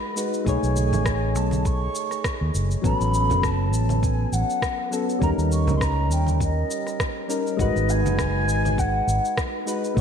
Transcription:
0.00 0.13 G#3 medium
0.00 0.13 D#4 medium
0.00 0.14 F#4 medium
0.00 0.15 B4 loud
0.00 0.17 B5 medium
0.16 0.43 G#3 medium
0.16 0.43 D#4 medium
0.16 0.44 F#4 medium
0.16 0.44 B4 medium
0.16 shaker medium
0.34 shaker soft
0.44 0.57 B1 medium
0.44 2.50 A3 medium
0.44 2.51 D#4 medium
0.44 2.52 G#4 medium
0.44 1.37 G#5 medium
0.44 kick loud
0.44 shaker soft
0.49 2.52 C#5 loud
0.63 0.92 B1 medium
0.63 shaker soft
0.76 high conga medium
0.76 shaker medium
0.92 1.35 A1 medium
0.92 high conga medium
0.92 low conga medium
0.92 shaker soft
1.06 kick loud
1.06 cross-stick medium
1.06 shaker soft
1.35 1.87 B1 medium
1.35 1.68 A5 medium
1.35 shaker medium
1.51 high conga medium
1.51 shaker soft
1.65 2.25 C#6 loud
1.65 kick loud
1.65 shaker soft
1.95 shaker medium
2.11 cross-stick soft
2.11 shaker soft
2.24 kick loud
2.24 cross-stick medium
2.24 shaker soft
2.41 2.49 D#2 medium
2.54 2.74 F#1 medium
2.54 shaker medium
2.71 shaker soft
2.82 2.94 A1 medium
2.82 4.88 F#3 medium
2.82 4.88 B3 medium
2.82 4.89 C#4 medium
2.82 3.46 B5 loud
2.82 kick loud
2.82 shaker soft
2.86 4.90 A4 medium
3.00 3.32 A1 medium
3.00 shaker soft
3.14 shaker medium
3.30 3.73 F#1 medium
3.30 high conga medium
3.30 low conga medium
3.30 shaker soft
3.43 4.04 A5 loud
3.43 kick medium
3.43 cross-stick medium
3.43 shaker soft
3.73 4.25 A1 loud
3.73 shaker medium
3.89 high conga medium
3.89 shaker soft
4.03 4.34 G#5 medium
4.03 kick medium
4.03 shaker soft
4.32 4.43 A1 medium
4.32 4.92 F#5 medium
4.32 shaker medium
4.50 shaker soft
4.62 kick loud
4.62 cross-stick loud
4.62 shaker soft
4.91 5.18 F#3 medium
4.91 5.18 B3 medium
4.91 5.19 C#4 medium
4.91 5.19 A4 medium
4.91 shaker medium
5.09 shaker soft
5.19 5.32 D#2 loud
5.19 7.25 G3 medium
5.19 7.26 C#4 medium
5.19 7.27 D#4 medium
5.19 5.29 A#5 loud
5.19 kick loud
5.19 shaker soft
5.23 7.27 A#4 loud
5.38 5.68 D#2 medium
5.38 shaker soft
5.52 5.74 C#6 loud
5.52 shaker medium
5.67 6.11 C#2 medium
5.67 high conga medium
5.67 low conga medium
5.67 shaker soft
5.76 5.84 C6 medium
5.81 6.14 A#5 medium
5.81 kick medium
5.81 cross-stick medium
5.81 shaker soft
6.11 6.62 D#2 medium
6.11 6.41 G5 medium
6.11 shaker medium
6.26 high conga medium
6.26 shaker soft
6.40 7.26 D#5 medium
6.40 kick medium
6.40 shaker soft
6.71 shaker medium
6.87 cross-stick soft
6.87 shaker soft
7.00 kick medium
7.00 cross-stick loud
7.00 shaker soft
7.28 7.56 G3 medium
7.28 7.56 C#4 medium
7.28 7.56 D#4 medium
7.28 7.56 A#4 medium
7.28 shaker medium
7.47 shaker soft
7.57 7.70 G#1 medium
7.57 9.63 G#3 medium
7.57 9.64 D#4 medium
7.57 9.64 F#4 medium
7.57 7.91 D#5 medium
7.57 kick loud
7.57 shaker soft
7.61 9.65 B4 medium
7.76 8.05 G#1 medium
7.76 shaker soft
7.90 8.80 G#5 loud
7.90 shaker medium
8.05 8.48 F#1 medium
8.05 high conga medium
8.05 low conga medium
8.05 shaker soft
8.19 kick medium
8.19 cross-stick medium
8.19 shaker soft
8.48 9.00 G#1 loud
8.48 shaker medium
8.65 high conga medium
8.65 shaker soft
8.78 9.38 F#5 medium
8.78 kick medium
8.78 shaker soft
9.07 9.18 G#1 medium
9.07 shaker medium
9.25 shaker soft
9.38 kick loud
9.38 cross-stick loud
9.38 shaker soft
9.66 9.93 G#3 medium
9.66 9.94 D#4 medium
9.66 9.94 F#4 medium
9.66 9.94 B4 medium
9.66 shaker medium
9.84 shaker soft
9.94 10.01 B1 loud
9.94 10.01 G#3 medium
9.94 10.01 A3 medium
9.94 10.01 D#4 medium
9.94 10.01 F#5 medium
9.94 kick loud
9.94 shaker soft

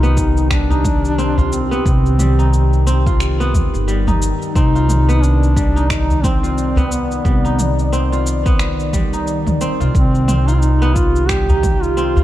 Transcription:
0.00 1.78 C2 medium
0.00 12.24 D#3 medium
0.00 1.24 B3 loud
0.00 0.44 D#4 medium
0.00 0.50 D#4 loud
0.00 1.21 F4 medium
0.00 4.56 G4 medium
0.00 cabasa soft
0.17 kick loud
0.17 cabasa medium
0.37 cabasa soft
0.51 2.18 G3 medium
0.51 1.48 D4 loud
0.51 finger snap medium
0.51 kick medium
0.51 cabasa soft
0.70 2.33 D#4 medium
0.70 udu medium
0.70 cabasa soft
0.84 kick loud
0.84 mid tom medium
0.84 cabasa medium
1.05 cabasa soft
1.18 1.77 C4 loud
1.18 cabasa soft
1.38 2.89 F4 medium
1.38 udu medium
1.38 cabasa soft
1.52 1.83 C4 medium
1.52 cabasa medium
1.71 2.93 B3 medium
1.71 cabasa soft
1.86 3.63 C2 medium
1.86 2.83 C4 medium
1.86 kick loud
1.86 cabasa soft
2.06 cabasa soft
2.19 3.86 G3 medium
2.19 mid tom medium
2.19 cabasa medium
2.39 4.01 D#4 medium
2.39 cabasa soft
2.53 cabasa soft
2.73 cabasa soft
2.87 3.46 C4 medium
2.87 cabasa medium
3.06 4.58 F4 medium
3.06 kick loud
3.06 cabasa soft
3.20 finger snap medium
3.20 cabasa soft
3.40 4.62 B3 loud
3.40 cabasa soft
3.54 kick medium
3.54 mid tom medium
3.54 udu medium
3.54 cabasa medium
3.74 4.30 G1 medium
3.74 cabasa soft
3.88 5.55 G3 medium
3.88 cabasa soft
4.07 5.70 D#4 medium
4.07 mid tom medium
4.07 udu medium
4.07 cabasa soft
4.22 cabasa medium
4.42 cabasa soft
4.55 7.17 C2 medium
4.55 5.15 C4 loud
4.55 5.24 D#4 loud
4.55 9.94 D5 medium
4.55 kick loud
4.55 cabasa soft
4.75 6.27 F4 medium
4.75 cabasa soft
4.89 mid tom medium
4.89 cabasa medium
5.09 6.30 B3 loud
5.09 cabasa soft
5.23 5.91 D4 loud
5.23 cabasa soft
5.43 cabasa soft
5.56 7.24 G3 medium
5.56 kick loud
5.56 cabasa medium
5.76 7.38 D#4 medium
5.76 cabasa soft
5.90 6.26 D#4 loud
5.90 finger snap medium
5.90 kick medium
5.90 cabasa soft
6.10 udu loud
6.10 cabasa soft
6.24 6.83 C4 loud
6.24 6.93 C4 medium
6.24 kick loud
6.24 mid tom medium
6.24 cabasa medium
6.43 7.95 F4 medium
6.43 cabasa soft
6.58 cabasa soft
6.76 7.99 B3 medium
6.76 udu loud
6.76 cabasa soft
6.91 7.92 B3 medium
6.91 cabasa medium
7.11 cabasa soft
7.25 9.61 C2 medium
7.25 8.92 G3 medium
7.25 kick loud
7.25 cabasa soft
7.45 9.07 D#4 medium
7.45 cabasa soft
7.59 mid tom medium
7.59 cabasa medium
7.79 cabasa soft
7.93 8.52 C4 loud
7.93 cabasa soft
8.12 9.64 F4 medium
8.12 cabasa soft
8.27 cabasa medium
8.46 9.67 B3 loud
8.46 kick loud
8.46 cabasa soft
8.59 finger snap medium
8.59 cabasa soft
8.80 cabasa soft
8.93 11.27 G3 medium
8.93 kick medium
8.93 mid tom medium
8.93 udu medium
8.93 cabasa medium
9.13 10.75 D#4 medium
9.13 cabasa soft
9.27 cabasa soft
9.47 mid tom medium
9.47 udu medium
9.47 cabasa soft
9.61 9.74 G1 medium
9.61 10.28 C4 medium
9.61 cabasa medium
9.80 9.90 C2 medium
9.80 10.47 F4 medium
9.80 cabasa soft
9.95 12.24 C2 medium
9.95 10.49 C4 loud
9.95 12.24 G4 medium
9.95 kick loud
9.95 cabasa soft
10.15 cabasa soft
10.28 10.88 C4 medium
10.28 mid tom medium
10.28 cabasa medium
10.48 10.55 D#4 loud
10.48 11.99 F4 medium
10.48 cabasa soft
10.54 10.61 F4 medium
10.59 10.97 D#4 loud
10.59 cabasa soft
10.82 12.03 B3 loud
10.82 cabasa soft
10.95 11.30 F4 loud
10.95 kick loud
10.95 cabasa medium
11.16 cabasa soft
11.28 12.24 G3 medium
11.28 11.84 G4 loud
11.28 finger snap medium
11.28 kick medium
11.28 cabasa soft
11.49 12.24 D#4 medium
11.49 udu medium
11.49 cabasa soft
11.63 kick loud
11.63 mid tom medium
11.63 cabasa medium
11.82 12.24 F4 loud
11.82 cabasa soft
11.97 12.24 C4 loud
11.97 cabasa soft
12.16 12.24 F4 medium
12.16 udu medium
12.16 cabasa soft

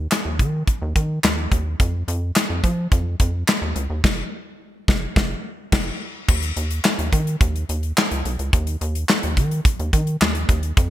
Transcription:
0.11 snare loud
0.11 clap medium
0.11 closed hi-hat loud
0.25 0.41 D#2 medium
0.39 0.63 D#3 loud
0.39 kick medium
0.39 closed hi-hat medium
0.67 kick loud
0.67 closed hi-hat medium
0.82 0.94 D#2 loud
0.96 1.19 D#3 medium
0.96 kick loud
0.96 closed hi-hat medium
1.23 1.48 D#2 medium
1.23 snare loud
1.23 clap medium
1.23 closed hi-hat medium
1.51 1.75 D#2 loud
1.51 kick medium
1.51 closed hi-hat medium
1.80 2.04 F2 loud
1.80 kick loud
1.80 closed hi-hat medium
2.08 2.32 F2 loud
2.08 closed hi-hat medium
2.35 snare loud
2.35 clap medium
2.35 closed hi-hat loud
2.50 2.62 F2 loud
2.64 2.88 F3 medium
2.64 kick medium
2.64 closed hi-hat medium
2.92 3.16 F2 loud
2.92 kick loud
2.92 closed hi-hat medium
3.20 3.44 F2 loud
3.20 kick loud
3.20 closed hi-hat medium
3.48 snare loud
3.48 clap medium
3.48 closed hi-hat medium
3.62 3.74 D#2 medium
3.76 3.88 C#2 medium
3.76 closed hi-hat medium
3.90 4.02 D#2 loud
4.04 4.23 F1 loud
4.04 kick loud
4.04 snare loud
4.04 crash medium
4.88 5.07 F1 loud
4.88 kick loud
4.88 snare medium
5.16 5.35 F1 loud
5.16 kick loud
5.16 snare loud
5.72 5.91 F1 loud
5.72 kick loud
5.72 snare loud
5.72 crash medium
6.28 6.52 D#2 loud
6.28 kick loud
6.28 crash loud
6.42 closed hi-hat medium
6.57 6.80 D#2 loud
6.57 closed hi-hat medium
6.71 closed hi-hat medium
6.84 snare loud
6.84 clap loud
6.99 7.10 D#2 loud
6.99 closed hi-hat medium
7.13 7.36 D#3 loud
7.13 kick medium
7.13 closed hi-hat medium
7.27 closed hi-hat soft
7.41 7.64 D#2 loud
7.41 kick loud
7.41 closed hi-hat medium
7.56 closed hi-hat soft
7.69 7.93 D#2 medium
7.69 closed hi-hat medium
7.83 closed hi-hat soft
7.97 snare loud
7.97 clap loud
8.11 8.23 C#2 medium
8.11 closed hi-hat medium
8.25 8.37 B1 loud
8.25 closed hi-hat medium
8.39 8.51 C#2 medium
8.39 closed hi-hat medium
8.53 8.77 D#2 loud
8.53 kick loud
8.53 closed hi-hat medium
8.67 closed hi-hat medium
8.81 9.05 D#2 loud
8.81 closed hi-hat medium
8.95 closed hi-hat medium
9.09 snare loud
9.09 clap medium
9.23 9.39 D#2 loud
9.23 closed hi-hat medium
9.37 9.61 D#3 loud
9.37 kick medium
9.37 closed hi-hat medium
9.51 closed hi-hat soft
9.65 kick loud
9.65 closed hi-hat medium
9.79 9.91 D#2 medium
9.79 closed hi-hat soft
9.93 10.17 D#3 medium
9.93 kick medium
9.93 closed hi-hat medium
10.07 closed hi-hat soft
10.21 10.45 D#2 medium
10.21 snare loud
10.21 clap loud
10.35 closed hi-hat medium
10.49 10.73 D#2 loud
10.49 kick loud
10.49 closed hi-hat medium
10.63 closed hi-hat soft
10.77 10.90 F2 loud
10.77 kick loud
10.77 closed hi-hat medium

